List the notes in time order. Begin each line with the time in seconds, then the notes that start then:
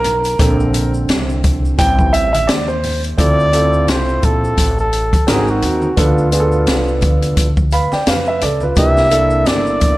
Already playing: B1 A#4
0.04 closed hi-hat, low conga, shaker
0.24 closed hi-hat, shaker
0.39 A#1 D3 C4 A4, kick, closed hi-hat, shaker
0.60 shaker
0.74 closed hi-hat, low conga, shaker
0.94 shaker
1.09 C2, snare, closed hi-hat, high conga, shaker
1.29 shaker
1.44 kick, closed hi-hat, low conga, shaker
1.65 shaker
1.78 A1 E3 G3 C4 G5, kick, closed hi-hat, shaker
1.99 kick, high conga, shaker
2.13 E5, closed hi-hat, shaker
2.33 E5, closed hi-hat, high conga, shaker
2.47 D#2 D5, snare, closed hi-hat, shaker
2.68 C5, shaker
2.83 open hi-hat, low conga, shaker
3.03 closed hi-hat, shaker
3.17 D2 C4 E4 F4 A4 D5, kick, closed hi-hat, shaker
3.40 shaker
3.52 C4 E4 F4 A4, closed hi-hat, shaker
3.73 shaker
3.88 C2 C5, snare, closed hi-hat, shaker
4.09 shaker
4.23 A#1 A4, kick, closed hi-hat, low conga, shaker
4.44 shaker
4.58 A1, kick, closed hi-hat, shaker
4.78 A4, shaker
4.93 closed hi-hat, shaker
5.13 muted upright bass stroke, kick, closed hi-hat, high conga, shaker
5.27 G#1 C4 D#4 F#4 G#4 A#4, snare, closed hi-hat, shaker
5.48 F#4, shaker
5.62 D#2, closed hi-hat, low conga, shaker
5.82 high conga, shaker
5.96 D2 B3 D4 F4 A4, kick, closed hi-hat, shaker
6.18 shaker
6.32 B3 D4 F4 G#4, closed hi-hat, shaker
6.40 A4
6.52 shaker
6.67 C2, snare, closed hi-hat, shaker
6.88 shaker
7.01 D2, kick, closed hi-hat, low conga, shaker
7.22 closed hi-hat, shaker
7.37 D2, kick, closed hi-hat, shaker
7.57 kick, shaker
7.71 B4 F5 B5, closed hi-hat, shaker
7.92 D5 G5, muted upright bass stroke, snare, high conga, shaker
8.06 F2 B4 F5, snare, closed hi-hat, shaker
8.26 B4 E5, shaker
8.41 C#2 A4 D5, closed hi-hat, low conga, shaker
8.60 F4 B4, high conga, shaker
8.76 C2 A#3 D4 E4 G4 E5, kick, closed hi-hat, shaker
8.97 snare, shaker
9.11 A#3 D4 E4 A4, closed hi-hat, shaker
9.30 shaker
9.46 G1 D5, snare, closed hi-hat, shaker
9.67 shaker
9.81 kick, closed hi-hat, low conga, shaker